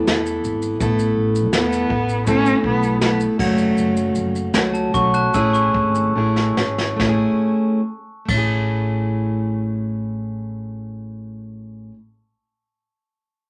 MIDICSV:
0, 0, Header, 1, 6, 480
1, 0, Start_track
1, 0, Key_signature, 3, "major"
1, 0, Tempo, 734394
1, 527, Time_signature, 4, 2, 24, 8
1, 1972, Tempo, 775194
1, 3412, Tempo, 828729
1, 4372, Tempo, 857143
1, 8010, End_track
2, 0, Start_track
2, 0, Title_t, "Glockenspiel"
2, 0, Program_c, 0, 9
2, 3036, Note_on_c, 0, 81, 73
2, 3155, Note_off_c, 0, 81, 0
2, 3164, Note_on_c, 0, 85, 86
2, 3281, Note_off_c, 0, 85, 0
2, 3287, Note_on_c, 0, 90, 81
2, 3291, Note_on_c, 0, 81, 70
2, 3405, Note_off_c, 0, 90, 0
2, 3407, Note_off_c, 0, 81, 0
2, 3411, Note_on_c, 0, 80, 64
2, 3412, Note_on_c, 0, 88, 72
2, 3522, Note_off_c, 0, 80, 0
2, 3523, Note_off_c, 0, 88, 0
2, 3523, Note_on_c, 0, 85, 76
2, 4223, Note_off_c, 0, 85, 0
2, 8010, End_track
3, 0, Start_track
3, 0, Title_t, "Steel-string acoustic guitar"
3, 0, Program_c, 1, 25
3, 47, Note_on_c, 1, 52, 68
3, 53, Note_on_c, 1, 59, 68
3, 59, Note_on_c, 1, 64, 77
3, 62, Note_on_c, 1, 69, 75
3, 523, Note_off_c, 1, 52, 0
3, 525, Note_on_c, 1, 57, 75
3, 528, Note_off_c, 1, 59, 0
3, 530, Note_on_c, 1, 59, 83
3, 532, Note_off_c, 1, 64, 0
3, 534, Note_off_c, 1, 69, 0
3, 534, Note_on_c, 1, 64, 88
3, 537, Note_on_c, 1, 69, 92
3, 998, Note_off_c, 1, 57, 0
3, 999, Note_off_c, 1, 59, 0
3, 1000, Note_on_c, 1, 57, 62
3, 1004, Note_off_c, 1, 64, 0
3, 1007, Note_on_c, 1, 59, 70
3, 1012, Note_on_c, 1, 64, 77
3, 1014, Note_off_c, 1, 69, 0
3, 1017, Note_on_c, 1, 69, 69
3, 1232, Note_off_c, 1, 69, 0
3, 1240, Note_on_c, 1, 69, 54
3, 1242, Note_off_c, 1, 57, 0
3, 1242, Note_off_c, 1, 64, 0
3, 1246, Note_off_c, 1, 59, 0
3, 1250, Note_on_c, 1, 64, 47
3, 1257, Note_on_c, 1, 59, 43
3, 1479, Note_off_c, 1, 59, 0
3, 1482, Note_off_c, 1, 64, 0
3, 1483, Note_off_c, 1, 69, 0
3, 1483, Note_on_c, 1, 57, 80
3, 1487, Note_on_c, 1, 59, 76
3, 1489, Note_on_c, 1, 64, 94
3, 1495, Note_on_c, 1, 69, 99
3, 1968, Note_off_c, 1, 57, 0
3, 1969, Note_off_c, 1, 59, 0
3, 1971, Note_on_c, 1, 57, 59
3, 1974, Note_off_c, 1, 64, 0
3, 1976, Note_on_c, 1, 59, 62
3, 1981, Note_on_c, 1, 64, 60
3, 1984, Note_off_c, 1, 69, 0
3, 1987, Note_on_c, 1, 69, 75
3, 2201, Note_off_c, 1, 57, 0
3, 2201, Note_off_c, 1, 69, 0
3, 2204, Note_off_c, 1, 64, 0
3, 2204, Note_on_c, 1, 66, 73
3, 2206, Note_off_c, 1, 59, 0
3, 2207, Note_on_c, 1, 61, 56
3, 2209, Note_on_c, 1, 57, 62
3, 2211, Note_on_c, 1, 54, 60
3, 2214, Note_on_c, 1, 49, 56
3, 2215, Note_on_c, 1, 42, 53
3, 2909, Note_off_c, 1, 54, 0
3, 2916, Note_on_c, 1, 54, 70
3, 2920, Note_off_c, 1, 66, 0
3, 2921, Note_off_c, 1, 57, 0
3, 2923, Note_on_c, 1, 57, 66
3, 2925, Note_off_c, 1, 42, 0
3, 2925, Note_off_c, 1, 49, 0
3, 2925, Note_off_c, 1, 61, 0
3, 2928, Note_on_c, 1, 61, 73
3, 2932, Note_on_c, 1, 66, 80
3, 3154, Note_off_c, 1, 66, 0
3, 3161, Note_off_c, 1, 61, 0
3, 3161, Note_on_c, 1, 66, 56
3, 3163, Note_off_c, 1, 54, 0
3, 3166, Note_off_c, 1, 57, 0
3, 3169, Note_on_c, 1, 61, 54
3, 3174, Note_on_c, 1, 57, 52
3, 3178, Note_on_c, 1, 54, 45
3, 3404, Note_off_c, 1, 57, 0
3, 3409, Note_off_c, 1, 54, 0
3, 3409, Note_off_c, 1, 61, 0
3, 3410, Note_off_c, 1, 66, 0
3, 3411, Note_on_c, 1, 57, 94
3, 3416, Note_on_c, 1, 61, 88
3, 3419, Note_on_c, 1, 64, 88
3, 3423, Note_on_c, 1, 68, 92
3, 3880, Note_off_c, 1, 57, 0
3, 3882, Note_on_c, 1, 57, 65
3, 3885, Note_off_c, 1, 61, 0
3, 3887, Note_on_c, 1, 61, 67
3, 3891, Note_off_c, 1, 64, 0
3, 3893, Note_on_c, 1, 64, 75
3, 3895, Note_off_c, 1, 68, 0
3, 3897, Note_on_c, 1, 68, 71
3, 4118, Note_off_c, 1, 68, 0
3, 4124, Note_off_c, 1, 64, 0
3, 4125, Note_off_c, 1, 57, 0
3, 4125, Note_on_c, 1, 68, 51
3, 4128, Note_off_c, 1, 61, 0
3, 4131, Note_on_c, 1, 64, 47
3, 4138, Note_on_c, 1, 61, 45
3, 4351, Note_on_c, 1, 57, 80
3, 4371, Note_off_c, 1, 68, 0
3, 4373, Note_off_c, 1, 61, 0
3, 4375, Note_off_c, 1, 64, 0
3, 4380, Note_on_c, 1, 61, 77
3, 4403, Note_on_c, 1, 64, 74
3, 4424, Note_on_c, 1, 68, 81
3, 4822, Note_off_c, 1, 57, 0
3, 4822, Note_off_c, 1, 61, 0
3, 4822, Note_off_c, 1, 64, 0
3, 4822, Note_off_c, 1, 68, 0
3, 5074, Note_on_c, 1, 57, 75
3, 5101, Note_on_c, 1, 61, 76
3, 5124, Note_on_c, 1, 64, 85
3, 5145, Note_on_c, 1, 68, 79
3, 7123, Note_off_c, 1, 57, 0
3, 7136, Note_off_c, 1, 61, 0
3, 7147, Note_off_c, 1, 64, 0
3, 7158, Note_off_c, 1, 68, 0
3, 8010, End_track
4, 0, Start_track
4, 0, Title_t, "Cello"
4, 0, Program_c, 2, 42
4, 0, Note_on_c, 2, 57, 98
4, 294, Note_off_c, 2, 57, 0
4, 1020, Note_on_c, 2, 59, 95
4, 1467, Note_off_c, 2, 59, 0
4, 1488, Note_on_c, 2, 61, 114
4, 1712, Note_off_c, 2, 61, 0
4, 1735, Note_on_c, 2, 59, 96
4, 1959, Note_off_c, 2, 59, 0
4, 1978, Note_on_c, 2, 59, 94
4, 2082, Note_off_c, 2, 59, 0
4, 2212, Note_on_c, 2, 57, 89
4, 2658, Note_off_c, 2, 57, 0
4, 8010, End_track
5, 0, Start_track
5, 0, Title_t, "Fretless electric bass"
5, 0, Program_c, 3, 35
5, 49, Note_on_c, 3, 40, 86
5, 245, Note_off_c, 3, 40, 0
5, 286, Note_on_c, 3, 32, 90
5, 483, Note_off_c, 3, 32, 0
5, 525, Note_on_c, 3, 33, 104
5, 721, Note_off_c, 3, 33, 0
5, 762, Note_on_c, 3, 33, 100
5, 999, Note_off_c, 3, 33, 0
5, 999, Note_on_c, 3, 40, 104
5, 1198, Note_off_c, 3, 40, 0
5, 1243, Note_on_c, 3, 33, 86
5, 1640, Note_off_c, 3, 33, 0
5, 1724, Note_on_c, 3, 35, 89
5, 2120, Note_off_c, 3, 35, 0
5, 2204, Note_on_c, 3, 30, 91
5, 2398, Note_off_c, 3, 30, 0
5, 2438, Note_on_c, 3, 30, 98
5, 2635, Note_off_c, 3, 30, 0
5, 2677, Note_on_c, 3, 30, 102
5, 2876, Note_off_c, 3, 30, 0
5, 2917, Note_on_c, 3, 37, 92
5, 3118, Note_off_c, 3, 37, 0
5, 3164, Note_on_c, 3, 35, 89
5, 3367, Note_off_c, 3, 35, 0
5, 3412, Note_on_c, 3, 33, 97
5, 3605, Note_off_c, 3, 33, 0
5, 3644, Note_on_c, 3, 32, 86
5, 3840, Note_off_c, 3, 32, 0
5, 3880, Note_on_c, 3, 33, 85
5, 4080, Note_off_c, 3, 33, 0
5, 4122, Note_on_c, 3, 32, 77
5, 4326, Note_off_c, 3, 32, 0
5, 4369, Note_on_c, 3, 33, 98
5, 4504, Note_off_c, 3, 33, 0
5, 5091, Note_on_c, 3, 33, 101
5, 7108, Note_off_c, 3, 33, 0
5, 8010, End_track
6, 0, Start_track
6, 0, Title_t, "Drums"
6, 48, Note_on_c, 9, 38, 98
6, 49, Note_on_c, 9, 82, 55
6, 114, Note_off_c, 9, 38, 0
6, 115, Note_off_c, 9, 82, 0
6, 171, Note_on_c, 9, 82, 50
6, 237, Note_off_c, 9, 82, 0
6, 290, Note_on_c, 9, 82, 52
6, 356, Note_off_c, 9, 82, 0
6, 407, Note_on_c, 9, 82, 50
6, 472, Note_off_c, 9, 82, 0
6, 526, Note_on_c, 9, 36, 100
6, 527, Note_on_c, 9, 82, 74
6, 592, Note_off_c, 9, 36, 0
6, 592, Note_off_c, 9, 82, 0
6, 647, Note_on_c, 9, 82, 58
6, 712, Note_off_c, 9, 82, 0
6, 885, Note_on_c, 9, 82, 50
6, 950, Note_off_c, 9, 82, 0
6, 999, Note_on_c, 9, 38, 111
6, 1001, Note_on_c, 9, 82, 74
6, 1064, Note_off_c, 9, 38, 0
6, 1066, Note_off_c, 9, 82, 0
6, 1123, Note_on_c, 9, 38, 35
6, 1127, Note_on_c, 9, 82, 52
6, 1189, Note_off_c, 9, 38, 0
6, 1192, Note_off_c, 9, 82, 0
6, 1243, Note_on_c, 9, 36, 86
6, 1309, Note_off_c, 9, 36, 0
6, 1365, Note_on_c, 9, 82, 52
6, 1430, Note_off_c, 9, 82, 0
6, 1483, Note_on_c, 9, 82, 75
6, 1486, Note_on_c, 9, 36, 85
6, 1548, Note_off_c, 9, 82, 0
6, 1551, Note_off_c, 9, 36, 0
6, 1607, Note_on_c, 9, 82, 47
6, 1672, Note_off_c, 9, 82, 0
6, 1726, Note_on_c, 9, 36, 84
6, 1791, Note_off_c, 9, 36, 0
6, 1850, Note_on_c, 9, 82, 52
6, 1916, Note_off_c, 9, 82, 0
6, 1970, Note_on_c, 9, 38, 106
6, 1971, Note_on_c, 9, 82, 57
6, 2032, Note_off_c, 9, 38, 0
6, 2033, Note_off_c, 9, 82, 0
6, 2087, Note_on_c, 9, 82, 52
6, 2149, Note_off_c, 9, 82, 0
6, 2205, Note_on_c, 9, 36, 102
6, 2206, Note_on_c, 9, 49, 77
6, 2267, Note_off_c, 9, 36, 0
6, 2268, Note_off_c, 9, 49, 0
6, 2319, Note_on_c, 9, 82, 50
6, 2381, Note_off_c, 9, 82, 0
6, 2441, Note_on_c, 9, 82, 63
6, 2502, Note_off_c, 9, 82, 0
6, 2560, Note_on_c, 9, 82, 58
6, 2622, Note_off_c, 9, 82, 0
6, 2675, Note_on_c, 9, 82, 57
6, 2737, Note_off_c, 9, 82, 0
6, 2799, Note_on_c, 9, 82, 51
6, 2861, Note_off_c, 9, 82, 0
6, 2914, Note_on_c, 9, 38, 112
6, 2916, Note_on_c, 9, 82, 68
6, 2976, Note_off_c, 9, 38, 0
6, 2978, Note_off_c, 9, 82, 0
6, 3043, Note_on_c, 9, 82, 49
6, 3104, Note_off_c, 9, 82, 0
6, 3163, Note_on_c, 9, 36, 92
6, 3165, Note_on_c, 9, 82, 49
6, 3225, Note_off_c, 9, 36, 0
6, 3227, Note_off_c, 9, 82, 0
6, 3286, Note_on_c, 9, 82, 53
6, 3348, Note_off_c, 9, 82, 0
6, 3409, Note_on_c, 9, 82, 67
6, 3413, Note_on_c, 9, 36, 84
6, 3467, Note_off_c, 9, 82, 0
6, 3471, Note_off_c, 9, 36, 0
6, 3528, Note_on_c, 9, 82, 42
6, 3586, Note_off_c, 9, 82, 0
6, 3645, Note_on_c, 9, 36, 85
6, 3703, Note_off_c, 9, 36, 0
6, 3764, Note_on_c, 9, 82, 52
6, 3822, Note_off_c, 9, 82, 0
6, 4003, Note_on_c, 9, 38, 60
6, 4060, Note_off_c, 9, 38, 0
6, 4124, Note_on_c, 9, 38, 89
6, 4181, Note_off_c, 9, 38, 0
6, 4246, Note_on_c, 9, 38, 85
6, 4304, Note_off_c, 9, 38, 0
6, 4369, Note_on_c, 9, 38, 78
6, 4371, Note_on_c, 9, 36, 100
6, 4425, Note_off_c, 9, 38, 0
6, 4427, Note_off_c, 9, 36, 0
6, 5092, Note_on_c, 9, 36, 105
6, 5092, Note_on_c, 9, 57, 80
6, 5148, Note_off_c, 9, 36, 0
6, 5148, Note_off_c, 9, 57, 0
6, 8010, End_track
0, 0, End_of_file